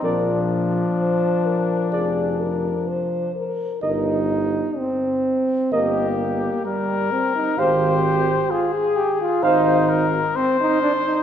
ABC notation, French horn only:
X:1
M:4/4
L:1/8
Q:1/4=64
K:Eb
V:1 name="French horn"
B z c B A B c B | B z3 B z3 | c z3 c z3 |]